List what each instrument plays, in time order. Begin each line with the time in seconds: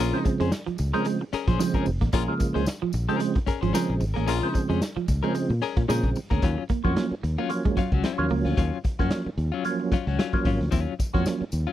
0.00 fingered electric bass A#1, clean electric guitar C#4 G#4 A#4, baritone saxophone F4
0.13 tonewheel organ C#3 F3 G#3 C4, closed hi-hat
0.25 muted clean electric guitar stroke, kick, closed hi-hat, tambourine
0.40 fingered electric bass F2, clean electric guitar G#3 C#4 G#4 C5, snare, closed hi-hat
0.52 muted clean electric guitar stroke, snare, tambourine
0.66 clean electric guitar F3, muted clean electric guitar stroke, muted fingered electric bass stroke, closed hi-hat
0.78 fingered electric bass C#2, muted clean electric guitar stroke, closed hi-hat, tambourine
0.93 tonewheel organ C#3 F3 G#3 C4, clean electric guitar G#3 C#4 G#4 A#4, closed hi-hat
1.05 clean electric guitar G#3, closed hi-hat, tambourine
1.21 muted clean electric guitar stroke
1.33 clean electric guitar C#4 G#4 A#4, muted fingered electric bass stroke, snare, closed hi-hat, tambourine
1.48 fingered electric bass A#1, clean electric guitar F3 C#4 G#4 C5, kick, snare, closed hi-hat
1.59 tonewheel organ C#3 F3 G#3 C4, clean electric guitar F3, muted clean electric guitar stroke, snare, tambourine
1.74 clean electric guitar C#4 G#4 A#4, muted clean electric guitar stroke, kick, closed hi-hat
1.86 fingered electric bass F1, open hi-hat, tambourine
2.01 fingered electric bass A1, clean electric guitar A#3, muted clean electric guitar stroke, kick, snare, closed hi-hat
2.13 fingered electric bass A#1, clean electric guitar A#3 C#4 G#4 A#4, baritone saxophone F4, kick, closed hi-hat, tambourine
2.28 tonewheel organ C#3 F3 G#3 A#3
2.40 muted clean electric guitar stroke, kick, closed hi-hat, tambourine
2.54 fingered electric bass C#2, clean electric guitar G#3 C#4 G#4 C5, snare, closed hi-hat
2.66 muted clean electric guitar stroke, snare, tambourine
2.82 clean electric guitar F3, muted fingered electric bass stroke, muted clean electric guitar stroke
2.93 fingered electric bass A#1, muted clean electric guitar stroke, closed hi-hat, tambourine
3.08 tonewheel organ C#3 F3 G#3 C4, clean electric guitar G#3 C#4 G#4 A#4, closed hi-hat
3.20 clean electric guitar G#3, closed hi-hat, tambourine
3.35 muted clean electric guitar stroke, kick, closed hi-hat
3.46 clean electric guitar C#4 G#4 A#4, muted fingered electric bass stroke, kick, snare, closed hi-hat
3.61 fingered electric bass G#1, clean electric guitar F3 C#4 G#4 C5, closed hi-hat
3.73 tonewheel organ C#3 F3 G#3 C4, clean electric guitar F3 C#4 G#4 A#4, snare, tambourine
3.88 fingered electric bass A#1, muted clean electric guitar stroke, closed hi-hat
4.00 fingered electric bass G#1, muted clean electric guitar stroke, open hi-hat, tambourine
4.14 fingered electric bass A1, clean electric guitar A#3 C#4 G#4 A#4, snare, closed hi-hat
4.26 fingered electric bass A#1, clean electric guitar A#3 C#4 G#4 A#4, baritone saxophone F4, closed hi-hat, tambourine
4.42 tonewheel organ C#3 F3 G#3 C4
4.53 muted clean electric guitar stroke, kick, closed hi-hat, tambourine
4.69 fingered electric bass F2, clean electric guitar G#3 C#4 G#4 C5, closed hi-hat
4.81 snare, tambourine
4.96 clean electric guitar F3, muted clean electric guitar stroke, muted fingered electric bass stroke, closed hi-hat
5.08 fingered electric bass C#2, muted clean electric guitar stroke, kick, open hi-hat, tambourine
5.23 tonewheel organ C#3 F3 G#3 C4, clean electric guitar G#3 C#4 G#4 A#4, closed hi-hat
5.34 clean electric guitar G#3, closed hi-hat, tambourine
5.50 fingered electric bass A#2, muted clean electric guitar stroke, closed hi-hat
5.62 clean electric guitar C#4 G#4 A#4, snare, closed hi-hat
5.76 fingered electric bass A#2, clean electric guitar A#3, muted clean electric guitar stroke, kick, snare, closed hi-hat
5.88 fingered electric bass A#2, tonewheel organ C#3 F3 G#3 C4, clean electric guitar G#3 C#4 G#4 A#4, snare, tambourine
6.03 fingered electric bass A#1, muted clean electric guitar stroke, kick, closed hi-hat
6.15 muted clean electric guitar stroke, open hi-hat, tambourine
6.30 fingered electric bass D2, clean electric guitar A#3 C#4 G#4 A#4, kick, snare, closed hi-hat
6.42 fingered electric bass D#2, clean electric guitar F#3 C#4 F4, kick, closed hi-hat
6.58 muted clean electric guitar stroke
6.69 clean electric guitar A#3, muted clean electric guitar stroke, kick, closed hi-hat
6.84 fingered electric bass F2, tonewheel organ F3 F#3 A#3 C#4, clean electric guitar F#3 C#4 F#4, kick
6.96 clean electric guitar A#3, muted clean electric guitar stroke, snare, closed hi-hat
7.11 muted clean electric guitar stroke, muted fingered electric bass stroke
7.23 fingered electric bass D#2, muted clean electric guitar stroke, closed hi-hat
7.38 clean electric guitar F#3 A#3 C#4 F4
7.49 tonewheel organ F3 F#3 A#3 C#4, muted clean electric guitar stroke, closed hi-hat
7.65 clean electric guitar G#3, muted clean electric guitar stroke, kick
7.77 clean electric guitar F#3 C#4 F4, muted fingered electric bass stroke, kick, snare, closed hi-hat
7.92 fingered electric bass C#2, clean electric guitar F#3 C#4 F#4, kick
8.04 clean electric guitar F#3 C#4 F4, snare, closed hi-hat
8.18 fingered electric bass D#2, tonewheel organ F3 F#3 A#3 C#4
8.30 fingered electric bass C#2, clean electric guitar A#3, muted clean electric guitar stroke, open hi-hat
8.45 fingered electric bass D2, clean electric guitar F#3 C#4 F4, snare
8.57 fingered electric bass D#2, clean electric guitar F#3 C#4 F4, kick, closed hi-hat
8.84 muted clean electric guitar stroke, kick, closed hi-hat
8.99 fingered electric bass F#2, tonewheel organ F3 F#3 A#3 C#4, clean electric guitar F#3 C#4 F#4, kick, snare
9.10 snare, closed hi-hat
9.26 muted fingered electric bass stroke, muted clean electric guitar stroke
9.38 fingered electric bass D#2, closed hi-hat
9.52 clean electric guitar F#3 C#4 F4
9.64 tonewheel organ F3 F#3 A#3 C#4, closed hi-hat
9.80 muted clean electric guitar stroke
9.92 clean electric guitar F#3 C#4 F4, muted fingered electric bass stroke, kick, snare, closed hi-hat
10.07 fingered electric bass C#2, clean electric guitar F#3 C#4 F#4, snare
10.19 clean electric guitar F#3 C#4 F4, snare, closed hi-hat
10.33 tonewheel organ F3 F#3 A#3 C#4, muted clean electric guitar stroke, kick
10.45 fingered electric bass G#1, clean electric guitar F#3 C#4 F4, kick, open hi-hat
10.61 fingered electric bass D2, muted clean electric guitar stroke, snare
10.71 fingered electric bass D#2, clean electric guitar F#3 C#4 F4, kick, closed hi-hat, tambourine
10.99 muted clean electric guitar stroke, kick, closed hi-hat, tambourine
11.13 fingered electric bass F2, tonewheel organ F3 F#3 A#3 C#4, clean electric guitar F#3 C#4 F#4, kick, snare
11.26 muted clean electric guitar stroke, snare, closed hi-hat, tambourine
11.41 muted clean electric guitar stroke, muted fingered electric bass stroke
11.52 fingered electric bass D#2, closed hi-hat, tambourine
11.67 clean electric guitar F#3 C#4 F4